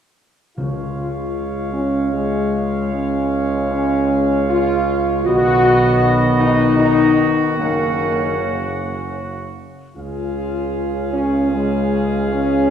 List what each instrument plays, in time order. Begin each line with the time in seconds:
0.57 tuba C#2, timpani C#3, trombone section C#3 G#3, french horn section F4, trumpet section C#5 F5
1.73 french horn section C#4
2.13 french horn section G#3
2.94 french horn section C#4
3.71 french horn section C#4
4.49 french horn section F4
5.24 tuba B1, trombone section D#3 B3, french horn section F#4, trumpet section F#4 D#5
6.40 french horn section D#4
6.79 french horn section D#4
7.57 tuba F#1, french horn section A#3, trombone section C#4, trumpet section F#5
8.38 trombone section C#3
9.96 tuba C#2, trombone section C#3 C#4, french horn section F4, trumpet section G#4 F5
11.13 french horn section C#4
11.51 french horn section G#3
12.32 french horn section C#4